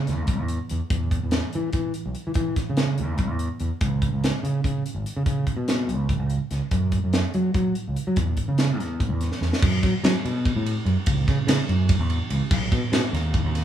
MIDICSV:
0, 0, Header, 1, 3, 480
1, 0, Start_track
1, 0, Key_signature, 4, "major"
1, 0, Tempo, 414365
1, 1047, Time_signature, 7, 3, 24, 8
1, 15805, End_track
2, 0, Start_track
2, 0, Title_t, "Fingered electric bass"
2, 0, Program_c, 0, 33
2, 94, Note_on_c, 0, 40, 79
2, 321, Note_off_c, 0, 40, 0
2, 321, Note_on_c, 0, 35, 77
2, 471, Note_off_c, 0, 35, 0
2, 471, Note_on_c, 0, 40, 86
2, 667, Note_off_c, 0, 40, 0
2, 825, Note_on_c, 0, 40, 89
2, 920, Note_off_c, 0, 40, 0
2, 1050, Note_on_c, 0, 40, 92
2, 1359, Note_off_c, 0, 40, 0
2, 1429, Note_on_c, 0, 40, 70
2, 1626, Note_off_c, 0, 40, 0
2, 1798, Note_on_c, 0, 52, 89
2, 1992, Note_off_c, 0, 52, 0
2, 2009, Note_on_c, 0, 52, 81
2, 2216, Note_off_c, 0, 52, 0
2, 2382, Note_on_c, 0, 35, 75
2, 2480, Note_off_c, 0, 35, 0
2, 2628, Note_on_c, 0, 52, 83
2, 2724, Note_off_c, 0, 52, 0
2, 2729, Note_on_c, 0, 52, 84
2, 2936, Note_off_c, 0, 52, 0
2, 3122, Note_on_c, 0, 49, 81
2, 3469, Note_on_c, 0, 40, 86
2, 3487, Note_off_c, 0, 49, 0
2, 3692, Note_off_c, 0, 40, 0
2, 3692, Note_on_c, 0, 35, 77
2, 3822, Note_off_c, 0, 35, 0
2, 3822, Note_on_c, 0, 40, 80
2, 4025, Note_off_c, 0, 40, 0
2, 4176, Note_on_c, 0, 40, 85
2, 4278, Note_off_c, 0, 40, 0
2, 4418, Note_on_c, 0, 37, 86
2, 4726, Note_off_c, 0, 37, 0
2, 4778, Note_on_c, 0, 37, 72
2, 4983, Note_off_c, 0, 37, 0
2, 5133, Note_on_c, 0, 49, 82
2, 5341, Note_off_c, 0, 49, 0
2, 5381, Note_on_c, 0, 49, 72
2, 5586, Note_off_c, 0, 49, 0
2, 5729, Note_on_c, 0, 32, 76
2, 5836, Note_off_c, 0, 32, 0
2, 5983, Note_on_c, 0, 49, 86
2, 6084, Note_off_c, 0, 49, 0
2, 6095, Note_on_c, 0, 49, 84
2, 6303, Note_off_c, 0, 49, 0
2, 6448, Note_on_c, 0, 47, 79
2, 6810, Note_on_c, 0, 37, 81
2, 6828, Note_off_c, 0, 47, 0
2, 7061, Note_on_c, 0, 32, 81
2, 7079, Note_off_c, 0, 37, 0
2, 7175, Note_off_c, 0, 32, 0
2, 7175, Note_on_c, 0, 37, 76
2, 7385, Note_off_c, 0, 37, 0
2, 7539, Note_on_c, 0, 37, 84
2, 7644, Note_off_c, 0, 37, 0
2, 7784, Note_on_c, 0, 42, 90
2, 8093, Note_off_c, 0, 42, 0
2, 8154, Note_on_c, 0, 42, 71
2, 8356, Note_off_c, 0, 42, 0
2, 8508, Note_on_c, 0, 54, 87
2, 8713, Note_off_c, 0, 54, 0
2, 8742, Note_on_c, 0, 54, 77
2, 8950, Note_off_c, 0, 54, 0
2, 9125, Note_on_c, 0, 37, 60
2, 9220, Note_off_c, 0, 37, 0
2, 9349, Note_on_c, 0, 54, 85
2, 9451, Note_off_c, 0, 54, 0
2, 9470, Note_on_c, 0, 40, 83
2, 9675, Note_off_c, 0, 40, 0
2, 9824, Note_on_c, 0, 49, 75
2, 10193, Note_off_c, 0, 49, 0
2, 10193, Note_on_c, 0, 40, 76
2, 10428, Note_on_c, 0, 35, 84
2, 10446, Note_off_c, 0, 40, 0
2, 10553, Note_off_c, 0, 35, 0
2, 10553, Note_on_c, 0, 40, 77
2, 10757, Note_off_c, 0, 40, 0
2, 10901, Note_on_c, 0, 40, 90
2, 11007, Note_off_c, 0, 40, 0
2, 11151, Note_on_c, 0, 42, 113
2, 11355, Note_off_c, 0, 42, 0
2, 11394, Note_on_c, 0, 54, 92
2, 11494, Note_off_c, 0, 54, 0
2, 11625, Note_on_c, 0, 54, 100
2, 11728, Note_off_c, 0, 54, 0
2, 11871, Note_on_c, 0, 47, 93
2, 12177, Note_off_c, 0, 47, 0
2, 12227, Note_on_c, 0, 45, 98
2, 12432, Note_off_c, 0, 45, 0
2, 12574, Note_on_c, 0, 42, 98
2, 12681, Note_off_c, 0, 42, 0
2, 12825, Note_on_c, 0, 37, 113
2, 13029, Note_off_c, 0, 37, 0
2, 13067, Note_on_c, 0, 49, 99
2, 13168, Note_off_c, 0, 49, 0
2, 13286, Note_on_c, 0, 49, 110
2, 13395, Note_off_c, 0, 49, 0
2, 13536, Note_on_c, 0, 42, 86
2, 13846, Note_off_c, 0, 42, 0
2, 13893, Note_on_c, 0, 40, 110
2, 14100, Note_off_c, 0, 40, 0
2, 14254, Note_on_c, 0, 37, 88
2, 14357, Note_off_c, 0, 37, 0
2, 14496, Note_on_c, 0, 35, 117
2, 14701, Note_off_c, 0, 35, 0
2, 14733, Note_on_c, 0, 47, 95
2, 14836, Note_off_c, 0, 47, 0
2, 14966, Note_on_c, 0, 47, 115
2, 15071, Note_off_c, 0, 47, 0
2, 15208, Note_on_c, 0, 39, 99
2, 15517, Note_off_c, 0, 39, 0
2, 15575, Note_on_c, 0, 39, 102
2, 15778, Note_off_c, 0, 39, 0
2, 15805, End_track
3, 0, Start_track
3, 0, Title_t, "Drums"
3, 84, Note_on_c, 9, 42, 49
3, 92, Note_on_c, 9, 38, 29
3, 199, Note_off_c, 9, 42, 0
3, 207, Note_off_c, 9, 38, 0
3, 313, Note_on_c, 9, 42, 71
3, 322, Note_on_c, 9, 36, 85
3, 429, Note_off_c, 9, 42, 0
3, 438, Note_off_c, 9, 36, 0
3, 561, Note_on_c, 9, 42, 57
3, 677, Note_off_c, 9, 42, 0
3, 805, Note_on_c, 9, 42, 60
3, 921, Note_off_c, 9, 42, 0
3, 1046, Note_on_c, 9, 36, 107
3, 1047, Note_on_c, 9, 42, 71
3, 1162, Note_off_c, 9, 36, 0
3, 1163, Note_off_c, 9, 42, 0
3, 1289, Note_on_c, 9, 36, 69
3, 1292, Note_on_c, 9, 42, 57
3, 1404, Note_off_c, 9, 36, 0
3, 1408, Note_off_c, 9, 42, 0
3, 1520, Note_on_c, 9, 42, 79
3, 1528, Note_on_c, 9, 38, 101
3, 1636, Note_off_c, 9, 42, 0
3, 1644, Note_off_c, 9, 38, 0
3, 1768, Note_on_c, 9, 42, 54
3, 1884, Note_off_c, 9, 42, 0
3, 1999, Note_on_c, 9, 42, 62
3, 2008, Note_on_c, 9, 36, 76
3, 2115, Note_off_c, 9, 42, 0
3, 2123, Note_off_c, 9, 36, 0
3, 2246, Note_on_c, 9, 42, 57
3, 2362, Note_off_c, 9, 42, 0
3, 2487, Note_on_c, 9, 42, 52
3, 2602, Note_off_c, 9, 42, 0
3, 2713, Note_on_c, 9, 42, 73
3, 2728, Note_on_c, 9, 36, 89
3, 2829, Note_off_c, 9, 42, 0
3, 2843, Note_off_c, 9, 36, 0
3, 2969, Note_on_c, 9, 42, 54
3, 2970, Note_on_c, 9, 36, 72
3, 2977, Note_on_c, 9, 38, 31
3, 3085, Note_off_c, 9, 42, 0
3, 3086, Note_off_c, 9, 36, 0
3, 3093, Note_off_c, 9, 38, 0
3, 3206, Note_on_c, 9, 42, 71
3, 3214, Note_on_c, 9, 38, 107
3, 3321, Note_off_c, 9, 42, 0
3, 3329, Note_off_c, 9, 38, 0
3, 3448, Note_on_c, 9, 42, 49
3, 3564, Note_off_c, 9, 42, 0
3, 3680, Note_on_c, 9, 42, 63
3, 3691, Note_on_c, 9, 36, 80
3, 3796, Note_off_c, 9, 42, 0
3, 3807, Note_off_c, 9, 36, 0
3, 3928, Note_on_c, 9, 42, 54
3, 4044, Note_off_c, 9, 42, 0
3, 4165, Note_on_c, 9, 42, 53
3, 4281, Note_off_c, 9, 42, 0
3, 4410, Note_on_c, 9, 42, 68
3, 4415, Note_on_c, 9, 36, 100
3, 4526, Note_off_c, 9, 42, 0
3, 4531, Note_off_c, 9, 36, 0
3, 4655, Note_on_c, 9, 42, 52
3, 4656, Note_on_c, 9, 36, 69
3, 4771, Note_off_c, 9, 42, 0
3, 4772, Note_off_c, 9, 36, 0
3, 4907, Note_on_c, 9, 42, 82
3, 4915, Note_on_c, 9, 38, 104
3, 5023, Note_off_c, 9, 42, 0
3, 5031, Note_off_c, 9, 38, 0
3, 5151, Note_on_c, 9, 42, 56
3, 5267, Note_off_c, 9, 42, 0
3, 5378, Note_on_c, 9, 36, 75
3, 5384, Note_on_c, 9, 42, 64
3, 5494, Note_off_c, 9, 36, 0
3, 5500, Note_off_c, 9, 42, 0
3, 5626, Note_on_c, 9, 42, 57
3, 5742, Note_off_c, 9, 42, 0
3, 5863, Note_on_c, 9, 42, 64
3, 5979, Note_off_c, 9, 42, 0
3, 6094, Note_on_c, 9, 36, 88
3, 6095, Note_on_c, 9, 42, 68
3, 6210, Note_off_c, 9, 36, 0
3, 6211, Note_off_c, 9, 42, 0
3, 6333, Note_on_c, 9, 42, 55
3, 6334, Note_on_c, 9, 36, 66
3, 6449, Note_off_c, 9, 42, 0
3, 6450, Note_off_c, 9, 36, 0
3, 6578, Note_on_c, 9, 42, 79
3, 6586, Note_on_c, 9, 38, 103
3, 6694, Note_off_c, 9, 42, 0
3, 6702, Note_off_c, 9, 38, 0
3, 6823, Note_on_c, 9, 42, 53
3, 6939, Note_off_c, 9, 42, 0
3, 7056, Note_on_c, 9, 36, 76
3, 7057, Note_on_c, 9, 42, 56
3, 7172, Note_off_c, 9, 36, 0
3, 7173, Note_off_c, 9, 42, 0
3, 7294, Note_on_c, 9, 42, 48
3, 7410, Note_off_c, 9, 42, 0
3, 7537, Note_on_c, 9, 42, 54
3, 7545, Note_on_c, 9, 38, 30
3, 7652, Note_off_c, 9, 42, 0
3, 7660, Note_off_c, 9, 38, 0
3, 7774, Note_on_c, 9, 42, 69
3, 7778, Note_on_c, 9, 36, 95
3, 7890, Note_off_c, 9, 42, 0
3, 7894, Note_off_c, 9, 36, 0
3, 8015, Note_on_c, 9, 42, 51
3, 8016, Note_on_c, 9, 36, 63
3, 8130, Note_off_c, 9, 42, 0
3, 8132, Note_off_c, 9, 36, 0
3, 8258, Note_on_c, 9, 42, 75
3, 8266, Note_on_c, 9, 38, 109
3, 8374, Note_off_c, 9, 42, 0
3, 8382, Note_off_c, 9, 38, 0
3, 8500, Note_on_c, 9, 42, 50
3, 8616, Note_off_c, 9, 42, 0
3, 8737, Note_on_c, 9, 42, 58
3, 8740, Note_on_c, 9, 36, 78
3, 8853, Note_off_c, 9, 42, 0
3, 8856, Note_off_c, 9, 36, 0
3, 8980, Note_on_c, 9, 42, 59
3, 9096, Note_off_c, 9, 42, 0
3, 9226, Note_on_c, 9, 42, 60
3, 9342, Note_off_c, 9, 42, 0
3, 9455, Note_on_c, 9, 42, 73
3, 9462, Note_on_c, 9, 36, 98
3, 9571, Note_off_c, 9, 42, 0
3, 9578, Note_off_c, 9, 36, 0
3, 9692, Note_on_c, 9, 42, 54
3, 9701, Note_on_c, 9, 36, 62
3, 9808, Note_off_c, 9, 42, 0
3, 9817, Note_off_c, 9, 36, 0
3, 9938, Note_on_c, 9, 42, 73
3, 9946, Note_on_c, 9, 38, 106
3, 10054, Note_off_c, 9, 42, 0
3, 10062, Note_off_c, 9, 38, 0
3, 10198, Note_on_c, 9, 42, 52
3, 10206, Note_on_c, 9, 38, 26
3, 10314, Note_off_c, 9, 42, 0
3, 10322, Note_off_c, 9, 38, 0
3, 10428, Note_on_c, 9, 36, 72
3, 10431, Note_on_c, 9, 42, 66
3, 10544, Note_off_c, 9, 36, 0
3, 10547, Note_off_c, 9, 42, 0
3, 10665, Note_on_c, 9, 42, 63
3, 10673, Note_on_c, 9, 38, 32
3, 10781, Note_off_c, 9, 42, 0
3, 10789, Note_off_c, 9, 38, 0
3, 10793, Note_on_c, 9, 38, 54
3, 10909, Note_off_c, 9, 38, 0
3, 10913, Note_on_c, 9, 38, 57
3, 11029, Note_off_c, 9, 38, 0
3, 11040, Note_on_c, 9, 38, 83
3, 11149, Note_on_c, 9, 49, 127
3, 11150, Note_on_c, 9, 36, 118
3, 11156, Note_off_c, 9, 38, 0
3, 11265, Note_off_c, 9, 36, 0
3, 11265, Note_off_c, 9, 49, 0
3, 11388, Note_on_c, 9, 36, 76
3, 11388, Note_on_c, 9, 51, 70
3, 11397, Note_on_c, 9, 38, 35
3, 11504, Note_off_c, 9, 36, 0
3, 11504, Note_off_c, 9, 51, 0
3, 11512, Note_off_c, 9, 38, 0
3, 11631, Note_on_c, 9, 51, 106
3, 11639, Note_on_c, 9, 38, 118
3, 11747, Note_off_c, 9, 51, 0
3, 11755, Note_off_c, 9, 38, 0
3, 11878, Note_on_c, 9, 51, 71
3, 11994, Note_off_c, 9, 51, 0
3, 12110, Note_on_c, 9, 36, 82
3, 12114, Note_on_c, 9, 51, 87
3, 12226, Note_off_c, 9, 36, 0
3, 12230, Note_off_c, 9, 51, 0
3, 12353, Note_on_c, 9, 51, 82
3, 12469, Note_off_c, 9, 51, 0
3, 12583, Note_on_c, 9, 51, 77
3, 12699, Note_off_c, 9, 51, 0
3, 12814, Note_on_c, 9, 51, 109
3, 12822, Note_on_c, 9, 36, 110
3, 12930, Note_off_c, 9, 51, 0
3, 12938, Note_off_c, 9, 36, 0
3, 13065, Note_on_c, 9, 36, 83
3, 13070, Note_on_c, 9, 51, 81
3, 13078, Note_on_c, 9, 38, 35
3, 13181, Note_off_c, 9, 36, 0
3, 13186, Note_off_c, 9, 51, 0
3, 13194, Note_off_c, 9, 38, 0
3, 13303, Note_on_c, 9, 51, 123
3, 13311, Note_on_c, 9, 38, 123
3, 13419, Note_off_c, 9, 51, 0
3, 13427, Note_off_c, 9, 38, 0
3, 13543, Note_on_c, 9, 51, 76
3, 13659, Note_off_c, 9, 51, 0
3, 13773, Note_on_c, 9, 51, 96
3, 13777, Note_on_c, 9, 36, 102
3, 13889, Note_off_c, 9, 51, 0
3, 13893, Note_off_c, 9, 36, 0
3, 14013, Note_on_c, 9, 51, 87
3, 14129, Note_off_c, 9, 51, 0
3, 14252, Note_on_c, 9, 51, 84
3, 14368, Note_off_c, 9, 51, 0
3, 14488, Note_on_c, 9, 49, 104
3, 14491, Note_on_c, 9, 36, 118
3, 14604, Note_off_c, 9, 49, 0
3, 14607, Note_off_c, 9, 36, 0
3, 14733, Note_on_c, 9, 36, 82
3, 14734, Note_on_c, 9, 51, 74
3, 14849, Note_off_c, 9, 36, 0
3, 14850, Note_off_c, 9, 51, 0
3, 14975, Note_on_c, 9, 51, 115
3, 14983, Note_on_c, 9, 38, 117
3, 15091, Note_off_c, 9, 51, 0
3, 15099, Note_off_c, 9, 38, 0
3, 15227, Note_on_c, 9, 51, 70
3, 15235, Note_on_c, 9, 38, 38
3, 15343, Note_off_c, 9, 51, 0
3, 15351, Note_off_c, 9, 38, 0
3, 15453, Note_on_c, 9, 36, 94
3, 15459, Note_on_c, 9, 51, 86
3, 15568, Note_off_c, 9, 36, 0
3, 15575, Note_off_c, 9, 51, 0
3, 15697, Note_on_c, 9, 51, 77
3, 15706, Note_on_c, 9, 38, 41
3, 15805, Note_off_c, 9, 38, 0
3, 15805, Note_off_c, 9, 51, 0
3, 15805, End_track
0, 0, End_of_file